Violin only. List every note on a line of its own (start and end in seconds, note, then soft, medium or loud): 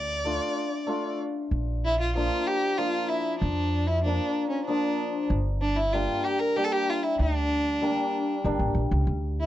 0.00 1.17 D5 medium
1.85 1.99 E4 loud
2.00 2.15 F4 medium
2.16 2.48 F4 medium
2.47 2.79 G4 loud
2.78 3.10 F4 medium
3.08 3.38 E4 medium
3.39 3.88 D4 medium
3.87 4.03 E4 medium
4.04 4.48 D4 medium
4.50 4.65 C#4 medium
4.65 5.26 D4 medium
5.62 5.78 D4 medium
5.76 5.94 E4 medium
5.92 6.25 F4 medium
6.24 6.41 G4 medium
6.39 6.57 A#4 medium
6.56 6.65 G4 loud
6.64 6.74 A4 medium
6.72 6.91 G4 loud
6.89 7.05 F4 loud
7.03 7.19 E4 medium
7.20 8.40 D4 loud
9.40 9.46 E4 medium